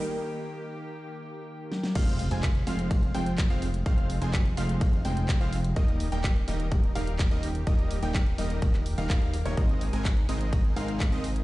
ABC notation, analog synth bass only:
X:1
M:4/4
L:1/16
Q:1/4=126
K:Fm
V:1 name="Analog synth bass" clef=bass
z16 | F,,,3 F,,,3 F,,,4 F,,,3 F,,,3 | F,,,3 F,,,3 F,,,4 F,,,3 F,,,3 | E,,,3 E,,,3 E,,,4 E,,,3 E,,,3 |
E,,,3 E,,,3 E,,,4- E,,, E,,, E,,,3 E,,, | A,,,3 A,,,3 A,,,4 A,,,3 A,,,3 |]